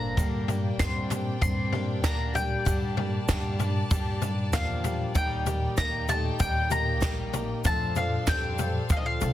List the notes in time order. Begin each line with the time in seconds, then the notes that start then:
Already playing: G1 A#3 C4 D4 F4 C5 F5 A#5
0.17 G2 D3 G3 A#3 D4 G4 D5 G5, kick, floor tom, shaker
0.48 G3 A#3 D4 G4, floor tom, shaker
0.79 G2 G3 A#3 C4 D4 G4 C6, kick, snare, clap, floor tom, shaker
1.11 G3 A#3 D4 G4, clap, floor tom, shaker
1.41 G2 G3 A#3 C4 D4 G4 C6, kick, floor tom, shaker
1.73 G3 A#3 D4 G4, floor tom
2.04 D2 G2 D3 G3 A#3 D4 G4 A#5, kick, snare, clap, floor tom, shaker
2.34 G3 A#3 D4 G4 G5, floor tom, shaker
2.65 G2 D3 G3 A#3 D4 G4 A5, kick, floor tom, shaker
2.97 G3 A#3 D4 G4, floor tom
3.29 G2 D3 G3 A#3 D4 G4, kick, snare, clap, floor tom, shaker
3.59 G3 A#3 D4 G4, floor tom, shaker
3.91 G2 G3 A#3 D4 G4, kick, floor tom, shaker
4.22 G3 A#3 D4 G4, floor tom, shaker
4.53 E2 G2 D3 F3 G3 A#3 D4 G4 F5, kick, snare, clap, floor tom, shaker
4.84 G3 A#3 D4 G4, floor tom, shaker
5.15 D#2 D#3 G3 A#3 D#4 G4 G5, kick, floor tom, shaker
5.46 A#3 D#4 G4, floor tom, shaker
5.77 D#2 G3 A#3 D#4 G4 A#5, kick, snare, clap, floor tom, shaker
6.08 A3 D#4 G4 A5, clap, floor tom, shaker
6.39 D#2 G3 A#3 D#4 G4 G5, kick, floor tom, shaker
6.70 A#3 D#4 G4 A#5, floor tom, shaker
7.00 A#1 D#3 G3 A#3 D#4 G4, kick, snare, clap, floor tom, shaker
7.33 A#3 D#4 G4, floor tom, shaker
7.64 F2 F3 A3 C4 D4 A4 C5 F5 A5, kick, floor tom, shaker
7.96 F3 C4 D4 A4 F5, floor tom, shaker
8.27 F2 F3 G3 C4 D4 A4 G5, kick, snare, clap, floor tom, shaker
8.58 C4 D4 A4, floor tom, shaker
8.90 D2 F3 C4 D4 A4 F5, kick, floor tom, shaker
8.97 D#3 D#5
9.06 F3 F5
9.21 C2 C4 D4 A4, floor tom, shaker